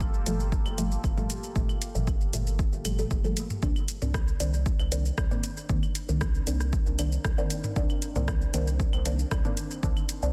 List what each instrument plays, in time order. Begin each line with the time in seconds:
Already playing: sub bass G1, ambient pad A#3 F4 G4 A4
0.00 kick, shaker
0.14 shaker
0.26 sub bass G1, synth stab A#2 F3 G3 A3, closed hi-hat, shaker
0.40 shaker
0.52 kick, shaker
0.66 sub bass G1, claves, shaker
0.78 synth stab A#2 F3 G3 A3, closed hi-hat, shaker
0.92 shaker
1.04 sub bass G1, kick, shaker
1.17 synth stab A#2 F3 G3 A3, mid tom, shaker
1.30 closed hi-hat, shaker
1.43 shaker
1.56 sub bass G1, synth stab A#2 F3 G3 A3, kick, shaker
1.69 claves, shaker
1.82 closed hi-hat, shaker
1.95 sub bass G1, synth stab A#2 F3 G3 A3, shaker
2.07 kick, shaker
2.21 shaker
2.33 sub bass G1, synth stab A#2 F3 G3 A3, closed hi-hat, shaker
2.47 shaker
2.59 kick, shaker
2.73 sub bass G1, shaker
2.85 synth stab A#2 F3 G3 A3, closed hi-hat, claves, shaker
2.98 synth stab A#2 F3 G3 A3, shaker
3.11 sub bass G1, kick, shaker
3.24 synth stab A#2 F3 G3 A3, shaker
3.37 closed hi-hat, shaker
3.50 mid tom, shaker
3.63 sub bass C2, synth stab D#3 A#3 C4 D4, ambient pad C4 D4 D#4 A#4, kick, shaker
3.76 claves, shaker
3.88 closed hi-hat, shaker
4.02 sub bass C2, synth stab D#3 A#3 C4 D4, mid tom, shaker
4.14 kick, cross-stick, shaker
4.28 shaker
4.40 sub bass C2, synth stab D#3 A#3 C4 D4, closed hi-hat, shaker
4.54 shaker
4.66 kick, shaker
4.79 sub bass C2, claves, shaker
4.92 synth stab D#3 A#3 C4 D4, closed hi-hat, shaker
5.05 shaker
5.18 sub bass C2, kick, cross-stick, shaker
5.31 synth stab D#3 A#3 C4 D4, mid tom, shaker
5.44 closed hi-hat, shaker
5.57 shaker
5.69 sub bass C2, synth stab D#3 A#3 C4 D4, kick, shaker
5.83 claves, shaker
5.95 closed hi-hat, shaker
6.09 sub bass C2, synth stab D#3 A#3 C4 D4, shaker
6.21 kick, cross-stick, shaker
6.35 shaker
6.47 sub bass C2, synth stab D#3 A#3 C4 D4, closed hi-hat, shaker
6.60 cross-stick, shaker
6.73 kick, shaker
6.86 sub bass C2, shaker
6.99 synth stab D#3 A#3 C4 D4, closed hi-hat, claves, shaker
7.12 shaker
7.25 sub bass C2, kick, cross-stick, shaker
7.38 synth stab D#3 A#3 C4 D4, shaker
7.50 closed hi-hat, shaker
7.64 mid tom, shaker
7.76 sub bass C2, synth stab D#3 A#3 C4 D4, kick, shaker
7.90 claves, shaker
8.02 closed hi-hat, shaker
8.16 sub bass C2, synth stab D#3 A#3 C4 D4, mid tom, shaker
8.28 kick, cross-stick, shaker
8.41 shaker
8.54 sub bass C2, synth stab D#3 A#3 C4 D4, closed hi-hat, shaker
8.67 shaker
8.80 kick, shaker
8.93 sub bass C2, claves, shaker
9.06 synth stab D#3 A#3 C4 D4, closed hi-hat, shaker
9.19 shaker
9.31 sub bass C2, kick, cross-stick, shaker
9.45 synth stab D#3 A#3 C4 D4, mid tom, shaker
9.57 closed hi-hat, shaker
9.71 shaker
9.83 sub bass C2, synth stab D#3 A#3 C4 D4, kick, shaker
9.97 claves, shaker
10.09 closed hi-hat, shaker
10.22 sub bass C2, synth stab D#3 A#3 C4 D4, shaker